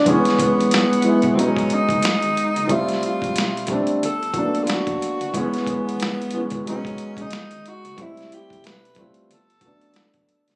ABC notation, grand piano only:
X:1
M:4/4
L:1/8
Q:"Swing 16ths" 1/4=91
K:Alyd
V:1 name="Grand piano"
[E,G,B,C]2 z [E,G,B,E] [F,G,B,D]3 z | [=G,A,=Ce]2 z [G,A,C=D] z [F,A,_B,=B,D]2 z | [E,G,B,C]2 z [E,G,B,C] [F,G,B,D]3 z | [=G,A,=CE]2 z [G,A,C=F] z [^F,A,B,=D]2 z |]